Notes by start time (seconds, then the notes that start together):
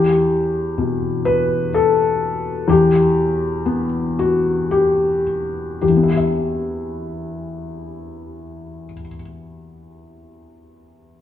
Already playing: E2 G4
0.78 B2
1.25 B4
1.74 A4
2.68 E2 G4
3.66 B3
4.19 F#4
4.71 G4
5.81 E2 G4
5.89 E3
5.96 B3
6.03 E4
6.11 G4
6.17 E5